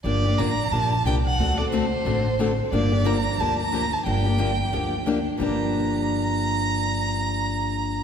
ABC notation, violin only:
X:1
M:4/4
L:1/8
Q:"Swing" 1/4=179
K:Gm
V:1 name="Violin"
d2 b2 a2 g ^f- | ^f d c4- c z | d2 b2 a b2 a | g6- g z |
b8- | b8 |]